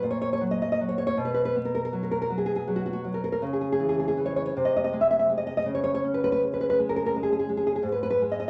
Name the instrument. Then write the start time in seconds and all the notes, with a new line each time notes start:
nylon-string guitar
0.03 A#2
0.11 C#5
0.21 C#5
0.33 C#5
0.41 F#3
0.51 D#5
0.62 D#5
0.72 D#5
0.81 F#3
0.89 C#5
0.98 C#5
1.07 C#5
1.17 B2
1.25 B4
1.34 B4
1.45 B4
1.56 B3
1.65 A#4
1.75 A#4
1.85 A#4
1.93 F#3
2.03 A#4
2.11 A#4
2.22 A#4
2.30 F#3
2.38 G#4
2.46 G#4
2.56 G#4
2.67 F#3
2.76 F#4
2.86 F#4
2.93 F#4
3.05 F#3
3.14 A#4
3.24 A#4
3.32 A#4
3.42 C#3
3.53 G#4
3.61 G#4
3.72 G#4
3.80 E3
3.89 G#4
3.99 G#4
4.08 G#4
4.17 E3
4.26 C#5
4.36 C#5
4.46 C#5
4.57 C3
4.65 D#5
4.76 D#5
4.84 D#5
4.93 G#3
5.01 E5
5.11 E5
5.19 E5
5.30 G#3
5.38 D#5
5.47 D#5
5.57 D#5
5.66 C#3
5.75 C#5
5.84 C#5
5.95 C#5
6.04 C#4
6.14 B4
6.24 B4
6.32 B4
6.43 G#3
6.54 B4
6.61 B4
6.70 B4
6.79 G#3
6.89 A#4
6.96 A#4
7.06 A#4
7.16 G#3
7.23 G#4
7.33 G#4
7.39 G#4
7.49 G#3
7.57 G#4
7.67 G#4
7.76 G#4
7.83 G#2
7.92 B4
8.03 B4
8.10 B4
8.22 G#3
8.32 D#5
8.40 D#5